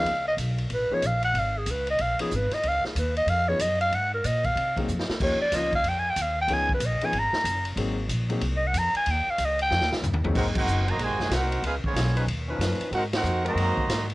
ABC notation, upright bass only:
X:1
M:4/4
L:1/8
Q:"Swing" 1/4=187
K:Db
V:1 name="Upright bass" clef=bass
D,,2 _C,,2 =A,,, z B,,,2 | A,,,2 D,,2 B,,, z A,,, z | D,, z E,,2 F,,2 G,,2 | A,,2 B,,2 C,2 F,, z |
E,, z D,,2 F,,2 E,,2 | D,,2 B,,, z A,,, z G,,,2 | A,,,2 B,,,2 C,,2 F,, z | E,, z D,,2 (3F,, E,, D,, (3=G,, E,, D,, |
[K:Dblyd] A,,,2 _G,,,2 (3B,,, A,,, G,,, C,,2 | D,, z _C,,2 E,,2 _G,, z | A,,2 F,,2 _G,, z A,,2 |]